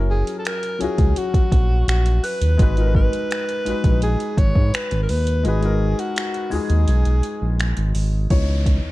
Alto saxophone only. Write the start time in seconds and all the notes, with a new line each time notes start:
0.10 G#4
0.39 A4
0.46 A#4
0.81 G#4
1.17 F#4
1.89 F#4
2.25 B4
2.96 B4
4.03 G#4
4.39 C#5
4.74 B4
5.03 A#4
5.10 B4
5.46 G#4
5.99 F#4
6.53 G#4